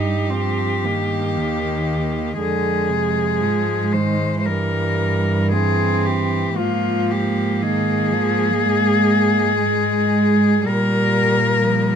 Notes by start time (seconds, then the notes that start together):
Already playing: G2 G3 D#4 G4
0.30 F3 C4
0.84 D#3 A#3
1.37 D#2
2.40 F2 D3 G#3 G#4
2.90 C3
3.41 G#2 F3
3.92 D#3 C5
4.39 C5
4.45 G2 E3 G3 A#4
5.52 C4 G#4
6.05 G4
6.58 G#2 F3 A#3 F4
7.11 G4
7.62 D#3 G#4
8.12 F3
8.62 G#3
9.62 G#3
10.64 A#2 G3 A#4
11.65 F3